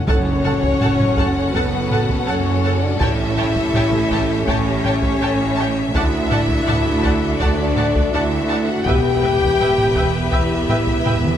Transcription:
0.06 0.72 F#1 medium
0.06 0.72 F#2 medium
0.06 1.14 F#2 medium
0.06 5.89 C#4 medium
0.06 1.51 C#4 loud
0.06 2.96 F#4 medium
0.06 5.89 A4 medium
0.06 0.17 A4 medium
0.06 1.49 C#5 loud
0.06 2.96 F#5 medium
0.06 0.17 F#5 medium
0.06 0.16 A5 medium
0.06 taiko loud
0.44 0.52 A4 medium
0.44 0.52 F#5 medium
0.44 0.53 A5 medium
0.44 taiko low-mid medium
0.63 taiko medium
0.81 1.45 F#1 medium
0.81 1.45 F#2 medium
0.81 0.90 A4 medium
0.81 0.90 F#5 medium
0.81 0.89 A5 medium
0.81 taiko low-mid medium
0.99 taiko low-mid medium
1.17 1.26 A4 medium
1.17 1.26 F#5 medium
1.17 1.26 A5 medium
1.17 taiko medium
1.53 2.19 F#1 medium
1.53 2.19 F#2 medium
1.53 2.27 B3 medium
1.53 1.63 A4 medium
1.53 2.26 B4 medium
1.53 1.63 F#5 medium
1.53 1.63 A5 medium
1.53 taiko medium
1.91 1.99 A4 medium
1.91 1.99 F#5 medium
1.91 2.00 A5 medium
1.91 taiko low-mid medium
2.09 taiko medium
2.25 2.92 F#1 medium
2.25 2.92 F#2 medium
2.25 2.83 C#4 medium
2.25 2.36 A4 medium
2.25 2.81 C#5 medium
2.25 2.36 F#5 medium
2.25 2.35 A5 medium
2.64 2.73 A4 medium
2.64 2.73 F#5 medium
2.64 2.72 A5 medium
2.81 3.01 D4 medium
2.81 3.00 D5 medium
3.00 3.65 A1 medium
3.00 3.65 A2 medium
3.00 4.43 E4 loud
3.00 5.93 G4 medium
3.00 3.09 C#5 medium
3.00 4.43 E5 loud
3.00 8.84 E5 medium
3.00 3.09 G5 medium
3.00 3.08 A5 medium
3.00 taiko medium
3.37 3.46 C#5 medium
3.37 3.46 G5 medium
3.37 3.46 A5 medium
3.37 taiko low-mid medium
3.55 taiko medium
3.73 4.38 A1 medium
3.73 4.38 A2 medium
3.73 3.83 C#5 medium
3.73 3.83 G5 medium
3.73 3.84 A5 medium
3.73 taiko low-mid medium
3.92 taiko low-mid medium
4.11 4.19 C#5 medium
4.11 4.19 G5 medium
4.11 4.21 A5 medium
4.11 taiko medium
4.45 5.12 A1 medium
4.45 5.11 A2 medium
4.45 5.89 C#4 loud
4.45 5.89 C#5 medium
4.45 4.56 C#5 medium
4.45 4.56 G5 medium
4.45 4.57 A5 medium
4.45 taiko medium
4.84 4.93 C#5 medium
4.84 4.93 G5 medium
4.84 4.95 A5 medium
4.84 taiko low-mid medium
5.02 taiko medium
5.20 5.85 A1 medium
5.20 5.84 A2 medium
5.20 5.30 C#5 medium
5.20 5.29 G5 medium
5.20 5.30 A5 medium
5.56 5.68 C#5 medium
5.56 5.67 G5 medium
5.56 5.64 A5 medium
5.92 6.58 D2 medium
5.92 8.86 D4 medium
5.92 7.36 E4 loud
5.92 8.86 F#4 medium
5.92 8.82 A4 medium
5.92 6.03 D5 medium
5.92 7.36 E5 loud
5.92 6.03 F#5 medium
5.92 6.03 A5 medium
5.92 taiko medium
6.31 6.39 D5 medium
6.31 6.39 F#5 medium
6.31 6.39 A5 medium
6.31 taiko low-mid medium
6.48 taiko medium
6.67 7.31 D2 medium
6.67 6.75 D5 medium
6.67 6.76 F#5 medium
6.67 6.76 A5 medium
6.67 taiko low-mid medium
6.86 taiko low-mid medium
7.03 7.12 D5 medium
7.03 7.13 F#5 medium
7.03 7.11 A5 medium
7.03 taiko medium
7.39 8.04 D2 medium
7.39 8.05 D2 medium
7.39 8.13 D4 loud
7.39 8.12 D5 medium
7.39 7.48 D5 medium
7.39 7.48 F#5 medium
7.39 7.48 A5 medium
7.39 taiko medium
7.76 7.86 D5 medium
7.76 7.86 F#5 medium
7.76 7.85 A5 medium
7.76 taiko low-mid medium
7.95 taiko medium
8.13 8.78 D2 medium
8.13 8.68 E4 loud
8.13 8.22 D5 medium
8.13 8.66 E5 medium
8.13 8.22 F#5 medium
8.13 8.22 A5 medium
8.48 8.59 D5 medium
8.48 8.59 F#5 medium
8.48 8.56 A5 medium
8.68 8.86 F#4 medium
8.68 8.86 F#5 medium
8.84 9.51 E1 medium
8.84 9.51 E2 medium
8.84 11.37 B3 medium
8.84 11.37 G4 medium
8.84 11.37 B4 medium
8.84 11.37 E5 medium
8.84 8.92 G5 medium
8.84 10.32 G5 loud
8.84 taiko medium
8.88 10.14 G4 loud
8.88 8.96 B4 medium
8.88 8.96 E5 medium
9.23 9.31 B4 medium
9.23 9.31 E5 medium
9.23 9.31 G5 medium
9.23 taiko low-mid medium
9.42 taiko medium
9.60 10.24 E1 medium
9.60 10.24 E2 medium
9.60 9.69 B4 medium
9.60 9.69 E5 medium
9.60 9.69 G5 medium
9.60 taiko low-mid medium
9.78 taiko low-mid soft
9.96 10.04 B4 medium
9.96 10.05 E5 medium
9.96 10.04 G5 medium
9.96 taiko medium
10.31 10.97 E1 medium
10.31 10.97 E2 medium
10.31 11.37 E4 loud
10.31 10.41 B4 medium
10.31 10.41 E5 medium
10.31 11.37 E5 medium
10.31 10.39 G5 medium
10.31 taiko medium
10.69 10.77 B4 medium
10.69 10.77 E5 medium
10.69 10.77 G5 medium
10.69 taiko low-mid medium
10.87 taiko medium
11.04 11.37 E1 medium
11.04 11.37 E2 medium
11.04 11.14 B4 medium
11.04 11.15 E5 medium
11.04 11.12 G5 medium
11.04 taiko low-mid medium
11.24 taiko mid medium

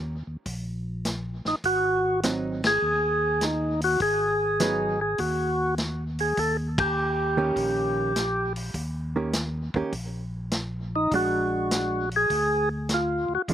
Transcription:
0.00 0.23 D#2 medium
0.27 0.37 D#2 soft
0.46 1.42 A#1 medium
0.46 kick soft
0.46 open hi-hat soft
1.05 snare medium
1.05 closed hi-hat soft
1.45 1.55 A#1 soft
1.45 1.56 D#4 medium
1.45 snare soft
1.64 2.78 G#1 medium
1.64 2.20 F#4 loud
1.64 kick soft
1.64 open hi-hat soft
2.23 2.60 F#3 medium
2.23 2.61 C4 medium
2.23 2.61 D#4 medium
2.23 snare medium
2.23 closed hi-hat medium
2.64 3.46 G#4 loud
2.64 snare medium
2.64 ride soft
2.82 3.97 D#2 medium
3.41 3.81 D#4 medium
3.41 snare medium
3.41 closed hi-hat soft
3.81 4.01 F#4 medium
3.81 open hi-hat soft
4.00 5.15 G#1 medium
4.00 5.00 G#4 medium
4.00 kick soft
4.00 open hi-hat soft
4.60 4.97 F#3 medium
4.60 4.97 B3 medium
4.60 4.98 D#4 medium
4.60 snare medium
4.60 closed hi-hat soft
5.01 5.20 G#4 medium
5.18 6.33 D#2 medium
5.18 5.75 F#4 medium
5.18 kick soft
5.18 open hi-hat soft
5.78 snare medium
5.78 closed hi-hat soft
6.19 6.39 G#4 medium
6.19 open hi-hat soft
6.37 7.52 D#2 medium
6.37 6.57 A4 loud
6.37 kick soft
6.37 open hi-hat soft
6.78 8.53 G4 medium
6.78 kick medium
6.78 ride medium
7.37 8.12 D#3 medium
7.37 8.12 A#3 medium
7.37 8.12 C#4 medium
7.37 8.12 G4 medium
7.56 8.71 A#1 medium
7.56 kick soft
7.56 open hi-hat soft
8.16 snare medium
8.16 closed hi-hat soft
8.56 open hi-hat soft
8.74 9.70 D#2 medium
8.74 kick soft
8.74 open hi-hat soft
9.16 9.32 D#3 medium
9.16 9.32 A#3 medium
9.16 9.33 C#4 soft
9.16 9.33 G4 soft
9.33 snare medium
9.33 closed hi-hat medium
9.74 9.83 D#2 soft
9.74 9.92 D#3 medium
9.74 9.92 A#3 medium
9.74 9.92 C#4 medium
9.74 9.92 G4 medium
9.74 kick soft
9.92 11.07 A#1 medium
9.92 kick soft
9.92 open hi-hat soft
10.51 snare medium
10.51 closed hi-hat soft
10.96 11.13 D#4 medium
11.11 12.26 A#1 medium
11.11 12.04 G#3 medium
11.11 12.05 D4 medium
11.11 kick soft
11.11 open hi-hat soft
11.15 12.09 F#4 medium
11.71 snare medium
11.71 closed hi-hat medium
12.11 open hi-hat soft
12.16 12.69 G#4 loud
12.30 13.26 D2 medium
12.30 kick soft
12.30 open hi-hat soft
12.89 snare medium
12.89 closed hi-hat soft
12.94 13.34 F4 medium
13.29 13.38 D2 soft
13.35 13.42 F#4 medium
13.48 13.54 F2 medium
13.48 13.54 F3 medium
13.48 13.54 G#3 medium
13.48 kick soft
13.48 open hi-hat soft

